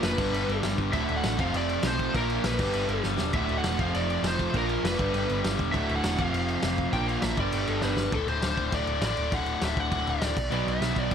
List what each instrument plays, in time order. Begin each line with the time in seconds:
Already playing: overdriven electric guitar A#2 F3 A#3 D4 F4 A#4
0.03 picked electric bass F1, lead electric guitar B4, snare, crash
0.18 picked electric bass G1, overdriven electric guitar G2 D3 G3 B3 D4 G4, kick, crash
0.32 picked electric bass G1, crash
0.48 picked electric bass G1, crash
0.63 picked electric bass G1, snare, crash
0.78 picked electric bass G1, kick, crash
0.93 picked electric bass D1, overdriven electric guitar D2 A2 D3 A3 F#4, lead electric guitar E5, kick, crash
1.09 picked electric bass D1, crash
1.16 lead electric guitar F#5
1.24 picked electric bass A1, snare, crash
1.39 picked electric bass F1, overdriven electric guitar F2 C3 F3 A3 C4 F4, lead electric guitar F5, kick, crash
1.54 picked electric bass F1, lead electric guitar D5, crash
1.69 crash
1.83 picked electric bass B1, lead electric guitar C5, snare, crash
1.99 kick, crash
2.14 picked electric bass A#1, overdriven electric guitar A#2 F3 A#3 D4 F4 A#4, lead electric guitar A#4, kick, crash
2.30 crash
2.44 picked electric bass A#1, lead electric guitar B4, snare, crash
2.59 picked electric bass G1, overdriven electric guitar G2 D3 G3 B3 D4 G4, kick, crash
2.73 picked electric bass G1, crash
2.88 picked electric bass G1, crash
3.03 picked electric bass G1, snare
3.17 picked electric bass E1, snare
3.33 picked electric bass D1, overdriven electric guitar D2 A2 D3, lead electric guitar E5, kick, crash
3.37 overdriven electric guitar A3 F#4
3.49 picked electric bass D1, crash
3.58 lead electric guitar F#5
3.64 picked electric bass E1, snare, crash
3.78 picked electric bass F1, overdriven electric guitar F2 C3 F3 A3 C4 F4, lead electric guitar F5, kick, crash
3.94 picked electric bass F1, lead electric guitar D5, crash
4.10 crash
4.23 picked electric bass F1, lead electric guitar C5, snare, crash
4.39 kick, crash
4.53 picked electric bass A#1, overdriven electric guitar A#2 F3 A#3 D4 F4 A#4, lead electric guitar A#4, kick, crash
4.69 crash
4.83 picked electric bass F1, lead electric guitar B4, snare, crash
4.98 picked electric bass G1, overdriven electric guitar G2 D3 G3 B3 D4 G4, kick, crash
5.14 picked electric bass G1, crash
5.29 picked electric bass G1, crash
5.45 picked electric bass G1, snare, crash
5.58 picked electric bass E1, kick, crash
5.72 picked electric bass D1, overdriven electric guitar D2 A2 D3 A3, lead electric guitar E5, kick, crash
5.77 overdriven electric guitar F#4
5.89 picked electric bass D1, crash
5.95 lead electric guitar F#5
6.04 picked electric bass E1, snare, crash
6.18 picked electric bass F1, overdriven electric guitar F2 C3 F3 A3 C4 F4, lead electric guitar F5, kick, crash
6.33 picked electric bass F1, lead electric guitar F5, crash
6.48 crash
6.63 picked electric bass F1, snare, crash
6.78 kick, crash
6.92 picked electric bass A#1, overdriven electric guitar A#2 F3 A#3 D4 F4 A#4, lead electric guitar G5, kick, crash
7.07 lead electric guitar F5, crash
7.22 picked electric bass A#1, lead electric guitar E5, snare, crash
7.37 picked electric bass G1, overdriven electric guitar G2 D3 G3 B3 D4 G4, lead electric guitar D5, kick, crash
7.52 picked electric bass G1, crash
7.67 picked electric bass G1, lead electric guitar A4, crash
7.81 picked electric bass G1, lead electric guitar B4, snare
7.97 picked electric bass G1, snare
8.11 picked electric bass D1, distorted electric guitar D2 A2 D3, lead electric guitar A4, kick, crash
8.27 picked electric bass D1, lead electric guitar C5, crash
8.42 picked electric bass D1, distorted electric guitar D2 A2 D3, snare, crash
8.57 picked electric bass D1, kick, crash
8.71 picked electric bass D1, distorted electric guitar D2 A2 D3, lead electric guitar D5, kick, crash
8.87 picked electric bass D1, crash
9.02 picked electric bass A1, distorted electric guitar D2 A2 D3, lead electric guitar D5, snare, crash
9.17 picked electric bass D1, crash
9.32 picked electric bass D1, distorted electric guitar D2 A2 D3, lead electric guitar F#5, kick, crash
9.46 crash
9.62 picked electric bass D1, distorted electric guitar D2 A2 D3, lead electric guitar E5, snare, crash
9.77 picked electric bass D1, lead electric guitar F#5, kick, crash
9.90 picked electric bass D1, distorted electric guitar D2 A2 D3, kick, crash
10.07 picked electric bass D1, lead electric guitar D5, crash
10.21 picked electric bass D1, distorted electric guitar D2 A2 D3, snare, crash
10.37 picked electric bass B1, kick, crash
10.51 picked electric bass B1, overdriven electric guitar B2 F#3 B3, lead electric guitar D5, crash
10.67 picked electric bass B1, lead electric guitar E5, crash
10.81 picked electric bass B1, overdriven electric guitar B2 F#3 B3, snare, crash
10.96 picked electric bass B1, lead electric guitar D5, kick, crash
11.11 picked electric bass B1, distorted electric guitar B2 F#3 B3, kick, crash